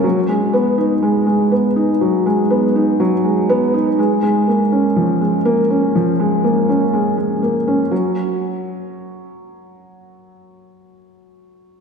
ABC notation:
X:1
M:4/4
L:1/8
Q:1/4=122
K:A#phr
V:1 name="Felt piano" clef=bass
F, G, B, D G, G, B, D | F, G, B, D F, G, B, D | G, G, A, C E, G, A, C | E, G, A, C G, G, A, C |
F, z6 z | z8 |]